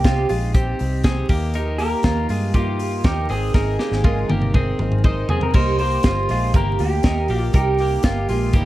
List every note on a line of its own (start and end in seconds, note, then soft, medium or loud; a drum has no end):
0.00 0.25 C2 medium
0.00 0.26 G4 medium
0.04 0.30 C3 medium
0.04 0.30 G3 medium
0.04 0.30 C4 medium
0.04 0.29 D#4 loud
0.04 0.28 F4 medium
0.04 0.28 G4 loud
0.04 kick loud
0.04 snare medium
0.04 closed hi-hat medium
0.29 0.73 A#1 loud
0.29 0.55 G#3 medium
0.29 0.54 C4 soft
0.29 0.55 D#4 medium
0.29 0.54 F4 medium
0.29 0.55 G4 medium
0.29 open hi-hat medium
0.54 0.80 G3 medium
0.54 0.80 C4 medium
0.54 0.79 D#4 medium
0.54 0.78 G4 medium
0.54 kick loud
0.54 closed hi-hat medium
0.79 1.23 C2 medium
0.79 1.05 C4 soft
0.79 1.05 D#4 medium
0.79 1.04 G4 medium
0.79 open hi-hat medium
1.04 1.30 C3 medium
1.04 1.30 G3 medium
1.04 1.31 C4 medium
1.04 1.30 D#4 medium
1.04 1.28 G4 medium
1.04 1.29 G#4 medium
1.04 kick loud
1.04 snare loud
1.04 closed hi-hat medium
1.29 1.93 D#2 loud
1.29 1.54 A#3 soft
1.29 1.55 D#4 medium
1.29 1.55 G4 medium
1.29 kick medium
1.29 open hi-hat medium
1.54 1.80 D#3 medium
1.54 1.80 F3 medium
1.54 1.80 A#3 medium
1.54 1.79 D#4 medium
1.54 1.78 G4 medium
1.54 1.79 A#4 medium
1.54 closed hi-hat medium
1.78 2.04 A#3 soft
1.78 2.04 D#4 soft
1.78 2.04 G4 soft
1.78 2.26 A#4 loud
1.78 open hi-hat medium
2.03 2.26 D#2 medium
2.03 2.30 D#3 medium
2.03 2.30 F3 medium
2.03 2.30 A#3 medium
2.03 2.30 D#4 medium
2.03 2.29 F4 medium
2.03 2.29 G4 medium
2.03 kick medium
2.03 snare medium
2.03 closed hi-hat medium
2.29 3.01 G2 medium
2.29 2.55 G#3 medium
2.29 2.54 A#3 soft
2.29 2.55 D#4 soft
2.29 2.55 F4 medium
2.29 2.55 G4 soft
2.29 open hi-hat medium
2.54 2.80 F3 medium
2.54 2.80 A#3 medium
2.54 2.80 D#4 medium
2.54 3.06 F4 medium
2.54 2.79 G4 medium
2.54 kick medium
2.54 closed hi-hat medium
2.79 3.04 A#3 soft
2.79 3.04 D#4 soft
2.79 3.04 G4 medium
2.79 open hi-hat medium
3.04 3.26 D#2 medium
3.04 3.30 D#3 medium
3.04 3.30 F3 medium
3.04 3.30 A#3 medium
3.04 3.30 D#4 medium
3.04 3.28 G4 medium
3.04 3.30 G4 medium
3.04 3.29 A#4 medium
3.04 kick loud
3.04 snare loud
3.04 closed hi-hat medium
3.29 3.51 G#1 medium
3.29 3.55 C4 soft
3.29 3.55 D#4 soft
3.29 3.54 G#4 medium
3.29 4.26 G#4 medium
3.29 3.55 A#4 soft
3.29 open hi-hat medium
3.54 3.76 G#1 medium
3.54 3.80 G#3 medium
3.54 3.80 C4 medium
3.54 3.79 D#4 medium
3.54 3.78 A#4 medium
3.54 kick loud
3.54 snare soft
3.79 4.05 A#3 soft
3.79 4.04 C4 soft
3.79 4.04 D#4 soft
3.79 4.05 G4 medium
3.79 4.05 A#4 soft
3.79 snare medium
3.91 4.24 G#1 medium
3.91 snare medium
4.04 4.30 G#3 medium
4.04 4.30 C4 medium
4.04 4.29 D#4 loud
4.04 4.30 F4 medium
4.04 4.27 A#4 loud
4.04 kick loud
4.04 high tom medium
4.29 4.72 G1 medium
4.29 4.55 A#3 medium
4.29 4.53 C4 soft
4.29 4.54 D#4 medium
4.29 4.55 G4 medium
4.29 4.54 A#4 medium
4.29 high tom medium
4.42 mid tom medium
4.54 4.80 G#3 medium
4.54 4.80 C4 medium
4.54 4.80 D#4 medium
4.54 5.02 G#4 medium
4.54 4.78 A#4 medium
4.54 kick medium
4.54 mid tom medium
4.79 5.22 G#1 medium
4.79 5.04 C4 soft
4.79 5.05 D#4 medium
4.79 5.05 A#4 medium
4.79 mid tom medium
4.92 mid tom medium
5.04 5.30 G#3 medium
5.04 5.30 C4 medium
5.04 5.29 D#4 medium
5.04 5.29 A#4 medium
5.04 5.30 C5 medium
5.04 kick loud
5.04 mid tom medium
5.29 5.55 C4 soft
5.29 5.54 D#4 soft
5.29 5.42 G#4 medium
5.29 5.55 G#4 medium
5.29 5.55 A#4 medium
5.29 floor tom medium
5.41 5.54 A#4 medium
5.41 floor tom medium
5.54 5.97 C2 medium
5.54 5.80 C3 medium
5.54 5.80 G3 medium
5.54 5.80 A#3 medium
5.54 5.79 D#4 medium
5.54 5.78 G4 medium
5.54 5.79 A#4 loud
5.54 5.78 C5 medium
5.54 kick loud
5.54 crash medium
5.79 6.04 A#3 soft
5.79 6.05 D#4 soft
5.79 6.04 G4 soft
5.79 6.56 C5 medium
5.79 open hi-hat medium
6.03 6.26 G1 medium
6.03 6.29 G3 medium
6.03 6.30 A#3 medium
6.03 6.28 D#4 medium
6.03 6.30 F4 medium
6.03 6.27 G4 medium
6.03 kick loud
6.03 snare loud
6.03 closed hi-hat medium
6.29 6.51 A#1 medium
6.29 6.56 G#3 medium
6.29 6.53 A#3 soft
6.29 6.54 D#4 soft
6.29 6.55 F4 medium
6.29 6.54 G4 soft
6.29 open hi-hat medium
6.54 6.76 G1 medium
6.54 6.79 C3 medium
6.54 6.80 G3 medium
6.54 6.80 A#3 medium
6.54 6.80 D#4 medium
6.54 6.78 G4 medium
6.54 6.81 A#4 medium
6.54 kick loud
6.54 closed hi-hat medium
6.79 7.01 D2 medium
6.79 7.03 A#3 soft
6.79 7.03 D#4 soft
6.79 7.04 G4 soft
6.79 7.37 G4 medium
6.79 open hi-hat medium
7.03 7.26 D#2 medium
7.03 7.29 G3 medium
7.03 7.29 A#3 medium
7.03 7.30 D#4 medium
7.03 7.28 G4 medium
7.03 7.30 A#4 medium
7.03 kick medium
7.03 snare loud
7.03 closed hi-hat medium
7.28 7.50 A#1 medium
7.28 7.52 A#3 soft
7.28 7.53 D#4 soft
7.28 7.53 G4 medium
7.28 open hi-hat medium
7.37 7.54 F4 medium
7.53 7.97 C2 medium
7.53 7.79 C3 medium
7.53 7.79 G3 medium
7.53 7.79 A#3 medium
7.53 7.79 D#4 medium
7.53 7.78 G4 medium
7.53 8.65 G4 medium
7.53 7.80 A#4 medium
7.53 kick loud
7.53 closed hi-hat medium
7.79 8.04 A#3 soft
7.79 8.04 D#4 soft
7.79 8.04 G4 soft
7.79 open hi-hat medium
8.03 8.26 G1 medium
8.03 8.30 G3 medium
8.03 8.30 A#3 medium
8.03 8.30 D#4 medium
8.03 8.28 F4 medium
8.03 8.29 G4 medium
8.03 kick medium
8.03 snare loud
8.03 closed hi-hat medium
8.29 8.50 A#1 medium
8.29 8.55 G#3 medium
8.29 8.55 A#3 medium
8.29 8.55 D#4 medium
8.29 8.54 F4 medium
8.29 8.55 G4 medium
8.29 open hi-hat medium
8.53 8.65 G1 medium
8.53 8.65 C3 medium
8.53 8.65 G3 medium
8.53 8.65 A#3 medium
8.53 8.65 D#4 loud
8.53 8.65 G4 loud
8.53 kick loud
8.53 closed hi-hat medium